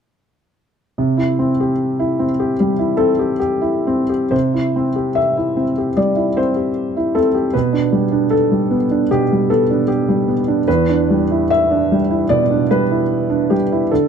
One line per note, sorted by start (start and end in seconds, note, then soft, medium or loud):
0.98 2.54 C3 soft
1.17 1.50 E4 soft
1.39 1.71 C4 soft
1.60 2.23 G4 soft
1.99 2.31 E4 soft
2.19 2.51 C4 soft
2.40 2.71 G4 soft
2.60 2.91 G3 soft
2.79 3.11 E4 soft
2.97 3.31 C4 soft
2.97 3.39 A4 medium
3.19 3.38 G4 soft
3.40 4.08 G4 soft
3.61 4.01 E4 soft
3.87 4.25 C4 soft
4.09 4.33 G4 soft
4.31 5.93 C3 soft
4.31 5.16 C5 soft
4.54 4.88 E4 soft
4.76 5.09 C4 soft
4.96 5.61 G4 soft
5.15 5.97 E5 medium
5.37 5.70 E4 soft
5.56 5.89 C4 soft
5.78 6.10 G4 soft
5.97 6.29 G3 soft
5.97 6.37 D5 soft
6.16 6.48 E4 soft
6.37 6.68 C4 soft
6.37 7.14 C5 soft
6.56 7.18 G4 soft
6.97 7.27 E4 soft
7.15 7.46 C4 soft
7.15 7.54 A4 soft
7.35 7.54 G4 soft
7.53 9.08 B2 soft
7.53 8.32 B4 soft
7.73 8.04 D4 soft
7.92 8.24 G3 soft
8.12 8.76 D4 soft
8.30 9.10 A4 soft
8.51 8.83 G3 soft
8.71 9.03 B3 soft
8.91 9.23 D4 soft
9.11 10.63 B2 soft
9.11 9.50 G4 medium
9.32 9.62 G3 soft
9.50 9.81 B3 soft
9.50 9.88 A4 medium
9.71 10.32 D4 soft
9.88 10.66 G4 soft
10.09 10.39 G3 soft
10.28 10.59 B3 soft
10.48 10.67 D4 soft
10.68 12.25 E2 soft
10.68 11.51 B4 medium
10.89 11.22 D4 soft
11.10 11.43 G3 soft
11.31 11.94 E4 soft
11.50 12.28 E5 medium
11.71 12.01 D4 soft
11.92 12.21 G3 soft
12.10 12.41 E4 soft
12.29 12.61 B2 soft
12.29 12.68 D5 medium
12.51 12.81 D4 soft
12.71 13.02 G3 soft
12.71 13.50 B4 medium
12.91 13.55 E4 soft
13.30 13.62 D4 soft
13.50 13.83 G3 soft
13.50 13.91 G4 soft
13.72 13.92 E4 soft
13.91 14.08 D3 soft
13.91 14.08 A4 soft